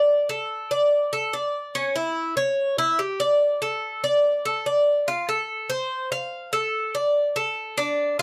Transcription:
0.00 0.28 D5 medium
0.29 0.70 A4 medium
0.71 1.11 D5 medium
1.13 1.33 A4 medium
1.33 1.74 D5 medium
1.75 1.95 C#4 medium
1.96 2.36 E4 medium
2.37 2.77 C#5 medium
2.78 2.99 E4 medium
2.99 3.19 G4 medium
3.20 3.61 D5 medium
3.62 4.02 A4 medium
4.04 4.44 D5 medium
4.45 4.66 A4 medium
4.66 5.06 D5 medium
5.08 5.28 F4 medium
5.29 5.69 A4 medium
5.70 6.10 C5 medium
6.12 6.52 F5 medium
6.53 6.93 A4 medium
6.95 7.35 D5 medium
7.36 7.76 A4 medium
7.78 8.18 D4 medium
8.19 8.22 F4 medium

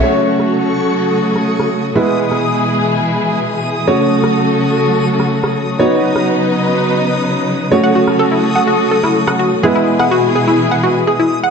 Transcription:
0.03 1.94 C#3 medium
0.03 1.94 F#3 medium
0.03 1.93 A3 medium
0.03 1.94 A3 medium
0.03 1.93 C#4 medium
0.03 1.93 F#4 medium
0.03 1.94 F#4 medium
0.03 1.94 A4 medium
0.03 1.93 C#5 medium
0.03 11.50 D#6 medium
0.03 crash medium
0.28 closed hi-hat medium
0.40 cross-stick medium
0.52 closed hi-hat medium
0.76 closed hi-hat medium
1.00 closed hi-hat medium
1.24 closed hi-hat medium
1.36 cross-stick medium
1.48 closed hi-hat medium
1.60 cross-stick medium
1.71 closed hi-hat medium
1.84 closed hi-hat soft
1.95 3.86 B2 medium
1.95 3.86 E3 medium
1.95 3.85 G#3 medium
1.95 3.86 G#3 medium
1.95 3.85 B3 medium
1.95 3.85 E4 medium
1.95 3.86 E4 medium
1.95 3.86 G#4 medium
1.95 3.85 B4 medium
2.20 closed hi-hat medium
2.32 cross-stick medium
2.68 closed hi-hat medium
2.80 closed hi-hat soft
2.92 closed hi-hat medium
3.16 closed hi-hat medium
3.40 closed hi-hat medium
3.64 closed hi-hat medium
3.76 closed hi-hat soft
3.87 5.78 C#3 medium
3.87 9.60 F#3 medium
3.87 5.78 A3 medium
3.87 5.77 A3 medium
3.87 5.77 C#4 medium
3.87 5.78 F#4 medium
3.87 5.77 F#4 medium
3.87 5.78 A4 medium
3.87 5.77 C#5 medium
3.87 closed hi-hat medium
4.12 closed hi-hat medium
4.24 cross-stick medium
4.24 closed hi-hat soft
4.36 closed hi-hat medium
4.59 closed hi-hat medium
4.72 closed hi-hat soft
4.84 closed hi-hat medium
5.08 closed hi-hat medium
5.20 cross-stick medium
5.32 closed hi-hat medium
5.44 cross-stick medium
5.56 closed hi-hat medium
5.68 closed hi-hat soft
5.79 9.60 C#3 medium
5.79 7.70 B3 medium
5.79 7.69 B3 medium
5.79 7.70 D#4 medium
5.79 7.69 D#4 medium
5.79 7.69 F#4 medium
5.79 7.70 B4 medium
5.79 7.69 C#5 medium
5.79 closed hi-hat medium
6.16 cross-stick medium
6.16 closed hi-hat soft
6.28 closed hi-hat medium
6.52 closed hi-hat medium
6.64 closed hi-hat soft
6.75 closed hi-hat medium
6.99 closed hi-hat medium
7.12 closed hi-hat soft
7.23 closed hi-hat medium
7.47 closed hi-hat medium
7.59 closed hi-hat soft
7.71 9.62 A3 medium
7.71 9.61 A3 medium
7.71 9.61 C#4 medium
7.71 9.61 F#4 medium
7.71 9.62 F#4 medium
7.71 9.62 A4 medium
7.71 9.61 C#5 medium
7.71 closed hi-hat medium
7.84 7.91 F#5 medium
7.95 8.07 F#4 medium
7.95 closed hi-hat medium
8.07 cross-stick medium
8.07 closed hi-hat soft
8.19 8.24 A4 medium
8.19 closed hi-hat medium
8.31 8.43 E4 medium
8.43 closed hi-hat medium
8.56 8.63 F#5 medium
8.67 8.79 F#4 medium
8.67 closed hi-hat medium
8.91 8.96 A4 medium
8.91 closed hi-hat medium
9.04 9.15 E4 medium
9.04 cross-stick medium
9.04 closed hi-hat soft
9.15 closed hi-hat medium
9.27 9.35 F#5 medium
9.27 cross-stick medium
9.39 9.51 F#4 medium
9.39 closed hi-hat medium
9.52 closed hi-hat soft
9.63 11.50 B2 medium
9.63 11.50 E3 medium
9.63 11.50 G#3 medium
9.63 11.50 B3 medium
9.63 11.50 E4 medium
9.63 9.68 G#4 medium
9.63 11.50 G#4 medium
9.63 11.50 B4 medium
9.63 closed hi-hat medium
9.75 9.87 E4 medium
9.87 closed hi-hat medium
9.99 10.07 F#5 medium
9.99 cross-stick medium
9.99 closed hi-hat soft
10.11 10.23 F#4 medium
10.11 closed hi-hat medium
10.35 10.40 G#4 medium
10.35 closed hi-hat medium
10.48 10.59 E4 medium
10.48 closed hi-hat soft
10.59 closed hi-hat medium
10.72 10.79 F#5 medium
10.83 10.95 F#4 medium
10.83 closed hi-hat medium
10.96 closed hi-hat soft
11.07 11.12 G#4 medium
11.07 closed hi-hat medium
11.20 11.31 E4 medium
11.32 closed hi-hat medium
11.44 11.50 F#5 medium
11.44 closed hi-hat soft

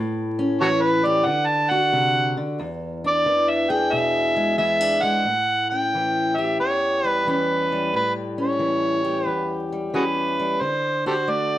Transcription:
0.00 1.28 A2 medium
0.39 1.25 C#4 medium
0.61 1.25 E3 medium
0.61 0.68 F#4 medium
0.61 0.67 A4 medium
0.61 0.83 C#5 loud
0.81 1.07 B4 loud
1.05 1.25 G4 medium
1.05 1.27 D5 medium
1.26 2.36 D3 medium
1.26 1.48 F#5 loud
1.46 1.71 A5 loud
1.70 2.58 F#4 medium
1.70 2.35 F#5 loud
1.93 2.37 C3 medium
2.37 2.60 D3 medium
2.59 5.26 E2 medium
3.04 4.58 D4 medium
3.04 3.51 D5 loud
3.26 4.57 E3 medium
3.50 3.72 E5 medium
3.70 5.23 G#4 medium
3.70 3.95 G5 loud
3.93 4.59 B2 medium
3.93 4.57 E5 loud
4.36 5.02 G#3 medium
4.58 5.23 E3 medium
4.58 4.81 B3 medium
4.58 5.04 E5 loud
4.81 5.26 D4 medium
5.02 5.23 G#3 medium
5.02 5.69 F#5 loud
5.25 6.59 A2 medium
5.70 7.27 C#4 medium
5.70 6.38 G5 loud
5.94 7.26 E3 medium
6.36 7.91 G4 medium
6.36 6.59 E5 medium
6.60 7.93 E2 medium
6.60 7.07 C#5 medium
7.04 7.71 G3 medium
7.04 7.29 B4 medium
7.27 7.91 E3 medium
7.27 7.91 C#4 medium
7.27 7.95 B4 medium
7.72 9.71 G3 medium
7.94 9.28 A2 medium
7.94 8.12 B4 medium
8.38 9.93 C#4 medium
8.38 9.27 C#5 medium
8.59 9.92 E3 medium
9.04 10.59 G4 medium
9.26 10.61 E2 medium
9.26 9.69 B4 medium
9.72 10.38 G3 medium
9.94 10.58 E3 medium
9.94 10.59 C#4 medium
9.94 10.03 F#4 medium
9.94 10.03 G#4 medium
9.94 10.63 B4 medium
10.39 10.62 G3 medium
10.61 11.58 D3 medium
10.61 11.06 C5 loud
11.06 11.58 F#4 medium
11.06 11.15 G4 medium
11.06 11.14 A4 medium
11.06 11.31 C5 medium
11.28 11.58 A3 medium
11.28 11.58 D5 medium

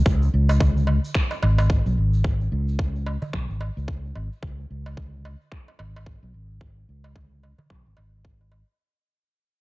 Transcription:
0.06 0.27 C#2 medium
0.06 kick medium
0.06 shaker medium
0.22 shaker soft
0.34 0.97 C#2 medium
0.49 darbuka tek medium
0.49 shaker medium
0.60 kick loud
0.60 darbuka dum medium
0.60 shaker medium
0.77 shaker soft
0.87 darbuka ka medium
1.05 shaker medium
1.15 finger snap medium
1.15 kick loud
1.15 shaker medium
1.31 darbuka ka medium
1.31 shaker soft
1.43 1.79 G#1 medium
1.43 darbuka tek medium
1.58 darbuka tek medium
1.58 shaker medium
1.70 kick medium
1.70 shaker medium
1.86 1.94 B1 medium
1.86 shaker soft
1.97 2.47 G#1 medium
2.14 shaker medium
2.24 kick medium
2.24 shaker soft
2.41 shaker soft
2.52 3.16 C#2 medium
2.68 shaker medium
2.79 kick loud
2.79 shaker soft
2.96 shaker soft
3.06 darbuka ka medium
3.22 darbuka tek soft
3.22 darbuka dum medium
3.22 shaker medium
3.33 3.45 B1 medium
3.33 finger snap medium
3.33 kick medium
3.33 shaker soft
3.49 3.68 G#1 medium
3.49 shaker soft
3.61 darbuka tek medium
3.77 4.11 C#2 medium
3.77 shaker medium
3.88 kick medium
4.05 shaker soft
4.16 4.27 G#1 medium
4.16 darbuka ka soft
4.32 shaker medium
4.43 4.64 C#2 medium
4.43 kick loud
4.60 shaker soft
4.70 5.34 C#2 medium
4.86 darbuka tek medium
4.86 shaker medium
4.97 kick medium
4.97 darbuka dum medium
5.14 shaker soft
5.25 darbuka ka medium
5.41 shaker medium
5.52 finger snap medium
5.52 kick loud
5.68 darbuka ka medium
5.79 6.16 G#1 medium
5.79 darbuka tek medium
5.96 darbuka tek medium
6.06 kick medium
6.23 6.31 B1 medium
6.34 6.84 G#1 medium
6.50 shaker medium
6.61 kick medium
6.89 7.52 C#2 medium
7.04 darbuka tek medium
7.16 kick loud
7.16 darbuka dum medium
7.43 darbuka ka medium
7.58 darbuka tek soft
7.58 darbuka dum medium
7.70 7.82 B1 medium
7.70 finger snap medium
7.70 kick medium
7.86 7.97 G#1 medium
7.97 8.61 G#1 medium
7.97 darbuka tek medium
8.25 kick medium
8.41 darbuka ka soft
8.52 darbuka ka soft

